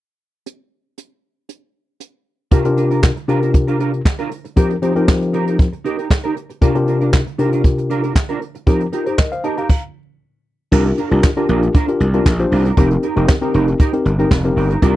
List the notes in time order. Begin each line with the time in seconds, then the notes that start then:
0.46 closed hi-hat
0.98 closed hi-hat
1.49 closed hi-hat
2.00 closed hi-hat
2.51 C3 D4 F4 G4 A#4, kick, closed hi-hat
2.65 C3 D4 F4 G4 A#4, closed hi-hat
2.77 D4 F4 A#4, closed hi-hat
2.90 D4 F4 A#4, closed hi-hat
3.03 muted clean electric guitar stroke, kick, snare, clap
3.16 muted clean electric guitar stroke, closed hi-hat
3.28 C3 D4 F4 G4 A#4, closed hi-hat
3.42 D4 F4 A#4, closed hi-hat
3.54 muted clean electric guitar stroke, kick, closed hi-hat
3.68 D4 F4 A#4, closed hi-hat
3.79 D4 F4 A#4, closed hi-hat
3.93 muted clean electric guitar stroke, closed hi-hat
4.05 muted clean electric guitar stroke, kick, snare, clap
4.18 D4 F4 A#4, closed hi-hat
4.31 muted clean electric guitar stroke, closed hi-hat
4.45 muted clean electric guitar stroke, closed hi-hat
4.56 F3 C4 D#4 G4 A#4, kick, closed hi-hat
4.70 closed hi-hat
4.82 F3 C4 D#4 G4 A#4 C5, closed hi-hat
4.95 F3 C4 D#4 G4 A#4, closed hi-hat
5.08 muted clean electric guitar stroke, kick, snare, clap
5.21 muted clean electric guitar stroke, closed hi-hat
5.33 D#4 G4 A#4, closed hi-hat
5.47 D#4 G4 A#4, closed hi-hat
5.59 muted clean electric guitar stroke, kick, closed hi-hat
5.73 muted clean electric guitar stroke, closed hi-hat
5.84 D#4 G4 A#4, closed hi-hat
5.98 D#4 G4 A#4, closed hi-hat
6.10 muted clean electric guitar stroke, kick, snare, clap
6.24 D#4 G4 A#4, closed hi-hat
6.36 muted clean electric guitar stroke, closed hi-hat
6.50 muted clean electric guitar stroke, closed hi-hat
6.61 C3 D4 F4 G4 A#4, kick, closed hi-hat
6.75 C3 D4 F4 G4 A#4, closed hi-hat
6.87 D4 F4 A#4, closed hi-hat
7.01 D4 F4 A#4, closed hi-hat
7.13 muted clean electric guitar stroke, kick, snare, clap
7.27 muted clean electric guitar stroke, closed hi-hat
7.38 C3 D4 D#4 F4 G4 A#4, closed hi-hat
7.45 F4
7.52 D4 F4 A#4, closed hi-hat
7.64 muted clean electric guitar stroke, kick, closed hi-hat
7.78 muted clean electric guitar stroke, closed hi-hat
7.90 D4 F4 A#4, closed hi-hat
8.03 D4 F4 A#4, closed hi-hat
8.16 muted clean electric guitar stroke, kick, snare, clap
8.29 D4 F4 A#4, closed hi-hat
8.41 muted clean electric guitar stroke, closed hi-hat
8.55 muted clean electric guitar stroke, closed hi-hat
8.67 F3 C4 D#4 G4 A#4, kick, closed hi-hat
8.80 closed hi-hat
8.92 D#4 F4 G4 A#4, closed hi-hat
9.06 D#4 G4 A#4 C5, closed hi-hat
9.18 A#4 D#5, muted clean electric guitar stroke, kick, snare, clap
9.32 C5 F5, muted clean electric guitar stroke, closed hi-hat
9.44 D#4 G4 A#4 D#5 A5, closed hi-hat
9.57 D#4 G4 A#4 F5 A#5, closed hi-hat
9.69 kick, crash
10.72 C2 D4 F4 G4 A#4, kick, crash
10.85 muted clean electric guitar stroke, closed hi-hat
10.98 D4 F4 A#4, closed hi-hat
11.11 C2 D4 F4 G4 A#4, closed hi-hat
11.23 kick, snare, clap
11.37 D4 F4 G4 A#4, closed hi-hat
11.49 A#1 D4 F4 A#4, closed hi-hat
11.62 muted clean electric guitar stroke, closed hi-hat
11.74 D4 F4 A#4, kick, closed hi-hat
11.88 D4 F4 G4 A#4, muted clean electric guitar stroke, closed hi-hat
12.00 C2, muted clean electric guitar stroke, closed hi-hat
12.14 D4 F4 G4 A#4, closed hi-hat
12.26 A#1, muted clean electric guitar stroke, kick, snare, clap
12.39 D4 F4 G4 C5, muted clean electric guitar stroke, closed hi-hat
12.51 C2 D4 F4 A#4, open hi-hat
12.65 D4 F4 A#4, closed hi-hat
12.77 F1 C4 D#4 G4 A#4, kick, closed hi-hat
12.90 muted clean electric guitar stroke, closed hi-hat
13.03 D#4 G4 A#4, closed hi-hat
13.16 F1 C4 D#4 G4 A#4, closed hi-hat
13.28 muted clean electric guitar stroke, kick, snare, clap
13.42 C4 D#4 G4 A#4, closed hi-hat
13.54 F1 D#4 G4 A#4, closed hi-hat
13.68 muted clean electric guitar stroke, closed hi-hat
13.80 D#4 G4 A#4, kick, closed hi-hat
13.93 C4 D#4 G4 A#4, muted clean electric guitar stroke, closed hi-hat
14.05 G1, muted clean electric guitar stroke, closed hi-hat
14.19 C4 D#4 G4 A#4, closed hi-hat
14.31 F1, muted clean electric guitar stroke, kick, snare, clap
14.44 C4 D#4 G4 A#4, muted clean electric guitar stroke, closed hi-hat
14.56 G1 D#4 G4 A#4, open hi-hat
14.70 D#4 G4 A#4, closed hi-hat
14.82 C2 D4 F4 G4 A#4, kick, closed hi-hat